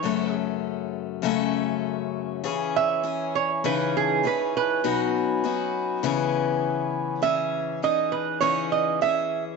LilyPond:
<<
  \new Staff \with { instrumentName = "Resonator guitar played with a steel bar" } { \time 4/4 \key cis \minor \tempo 4 = 100 cis''8 r2. r8 | r8 e''4 cis''8 b'8 gis'8 b'8 b'8~ | b'8 r2. r8 | e''4 dis''8 b'8 cis''8 dis''8 e''8. r16 | }
  \new Staff \with { instrumentName = "Accordion" } { \time 4/4 \key cis \minor << { r1 | cis''1 | b'1 | r1 | } \\ { r1 | cis'1~ | cis'2 cis'2 | r1 | } >> }
  \new Staff \with { instrumentName = "Accordion" } { \clef bass \time 4/4 \key cis \minor r1 | e1 | fis2 e2 | r1 | }
  \new Staff \with { instrumentName = "Steel-string acoustic guitar" } { \time 4/4 \key cis \minor <fis, cis fis a cis' a'>2 <fis, cis fis a cis' a'>2 | <cis e cis' gis'>4 <e cis' gis'>4 <cis e cis' dis' gis'>4 <e cis' dis' gis'>4 | <b, fis b dis' fis'>4 <fis b dis' fis'>4 <cis e b cis' gis'>2 | <cis e cis' gis'>4 <e cis' dis' gis'>4 <cis e cis' dis' gis'>4 <e cis' gis'>4 | }
>>